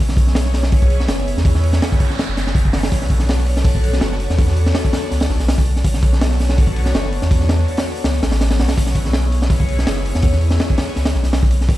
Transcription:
0.00 B1 B3 C#4 E4 G#4 C#5
0.09 snare
0.17 kick, open hi-hat
0.27 snare
0.35 snare, open hi-hat
0.46 snare
0.53 B3 C#4 E4 G#4 C#5, snare, open hi-hat
0.63 snare
0.72 kick, open hi-hat
0.82 kick
0.90 open hi-hat
1.00 snare
1.08 F#1, snare, open hi-hat
1.18 snare
1.28 open hi-hat
1.37 E2, snare
1.45 B3 C#4 E4 G#4 C#5, kick, open hi-hat, noise sweep
1.55 snare
1.63 open hi-hat
1.73 snare
1.82 snare, open hi-hat
1.92 kick
2.00 B3 C#4 E4 G#4 C#5, kick, open hi-hat
2.10 snare
2.19 snare, open hi-hat
2.28 F#1, snare
2.37 snare, open hi-hat
2.47 snare
2.55 B3 C#4 E4 G#4 C#5, kick, open hi-hat
2.65 kick
2.73 B3 C#4 E4 G#4 C#5, snare, open hi-hat
2.83 snare, open hi-hat
2.91 B1 B3 D4 F#4 A4 C#5, kick, open hi-hat
3.02 snare
3.10 kick, open hi-hat
3.19 snare
3.29 snare, open hi-hat
3.38 snare
3.46 B3 D4 F#4 A4 C#5, open hi-hat
3.57 snare
3.65 kick, open hi-hat
3.75 kick
3.84 open hi-hat
3.93 snare
4.01 F#1, snare, open hi-hat
4.12 snare
4.20 open hi-hat
4.29 E2, snare
4.38 B3 D4 F#4 A4 C#5, kick, open hi-hat
4.48 snare
4.56 open hi-hat
4.66 snare
4.75 snare, open hi-hat
4.85 kick
4.93 B3 D4 F#4 A4 C#5, snare, open hi-hat
5.03 snare
5.11 C#2, snare, open hi-hat
5.20 snare, open hi-hat
5.29 A1, snare
5.39 B1, snare, open hi-hat
5.48 snare, open hi-hat
5.58 kick
5.66 open hi-hat
5.76 snare
5.83 B1 B3 D4 F#4 A4 C#5, kick, open hi-hat
5.94 snare
6.03 kick, open hi-hat
6.13 snare
6.21 snare, open hi-hat
6.31 snare
6.39 B3 D4 F#4 A4 C#5, snare, open hi-hat
6.49 snare
6.58 kick, open hi-hat
6.67 kick
6.76 open hi-hat
6.86 snare
6.94 F#1, snare, open hi-hat
7.04 snare
7.13 open hi-hat
7.22 E2, snare
7.30 B3 D4 F#4 A4 C#5, kick, open hi-hat
7.40 snare
7.49 snare, open hi-hat
7.59 snare
7.68 open hi-hat
7.77 snare, open hi-hat
7.86 B3 D4 F#4 A4 C#5
7.95 open hi-hat
8.04 C#2, snare, open hi-hat
8.13 snare
8.22 A1, snare, open hi-hat
8.32 snare, open hi-hat
8.40 B3 D4 F#4 A4 C#5, snare, open hi-hat
8.50 snare, open hi-hat
8.59 B1 B3 D4 F#4 A4 C#5, snare, open hi-hat
8.68 snare, open hi-hat
8.77 B1 B3 C#4 E4 G#4 C#5, kick, open hi-hat
8.87 snare
8.95 kick, open hi-hat
9.05 snare
9.13 snare, open hi-hat
9.23 snare
9.32 B3 C#4 E4 G#4 C#5, open hi-hat
9.42 snare
9.50 kick, open hi-hat
9.60 kick
9.69 open hi-hat
9.79 snare
9.87 F#1, snare, open hi-hat
9.97 snare
10.06 open hi-hat
10.15 E2, snare
10.22 B3 C#4 E4 G#4 C#5, kick, open hi-hat
10.32 snare
10.41 open hi-hat
10.51 snare
10.60 snare, open hi-hat
10.70 kick
10.77 B3 C#4 E4 G#4 C#5, snare, open hi-hat
10.87 snare
10.96 C#2, snare, open hi-hat
11.05 snare, open hi-hat
11.14 B1, snare
11.23 B1, snare, open hi-hat
11.33 snare, open hi-hat
11.43 kick
11.51 open hi-hat
11.61 snare
11.69 B1 B3 C#4 E4 G#4 C#5, kick, open hi-hat

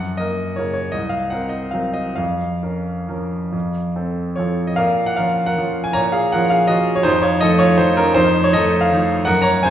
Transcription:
Already playing: F#2 F#5
0.17 A#3 A#4 D#5
0.56 C#3 A#3 A#4 C#5
0.73 C#5
0.92 C2 D#5
1.09 F5
1.30 C4 A#4 F#5
1.49 D#5
1.71 F#3 C4 A#4 F5
1.93 D#5
2.16 F2 F5
2.63 C#4 A#4
3.08 F3 C#4 A#4
3.52 F2
3.96 C4 A4
4.36 F3 C4 F4 A4 C#5
4.67 D#5
4.76 A#2 A#4 F5
5.06 F#5
5.16 F3 C#4 F4 A#4 F5
5.46 A#4 F#5
5.57 F3 C#4 F4
5.84 G#5
5.93 A#2 C#5 A#5
6.12 G#4 F5
6.32 F3 C#4 F4 A#4 F#5
6.50 G#4 F5
6.67 F3 C#4 F4 F#4 D#5
6.95 C#5
7.03 F2 D#4 C5
7.22 F4 C#5
7.41 F3 A3 D#4 A4 D#5
7.59 F4 C#5
7.78 F3 A3 D#4 C5
7.97 C#4 A#4
8.14 F2 D#4 C5
8.44 C#5
8.53 F3 A3 D#4 A4 D#5
8.81 F5
8.93 F3 A3 D#4
9.25 F#2 A#4 F#5
9.42 C#5 A#5
9.63 C#3 A#3 C#4 C5 G#5

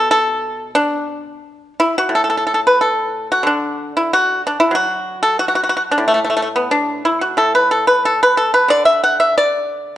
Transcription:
Already playing: B2
0.11 A4
0.75 D4
1.80 E4
1.98 F#4
2.09 A2
2.15 A4
2.24 A4
2.30 A4
2.37 A4
2.47 A4
2.54 A4
2.67 B4
2.81 A4
3.32 F#4
3.43 D3 D4
3.97 E4
4.13 F#4
4.47 D4
4.60 E4
4.71 F#3 F#4
5.23 A4
5.39 F#4
5.48 F#4
5.55 F#4
5.63 F#4
5.69 F#4
5.77 F#4
5.91 D4
5.98 A2
6.08 A3
6.14 A3
6.25 A3
6.30 A3
6.37 A3
6.42 A3
6.56 B3
6.71 D4
7.05 E4
7.21 F#4
7.37 A2 A4
7.55 B4
7.71 A4
7.87 B4
8.05 A4
8.23 B4
8.37 A4
8.54 B4
8.68 D3 D5
8.85 E5
9.04 F#5
9.20 E5
9.38 D5

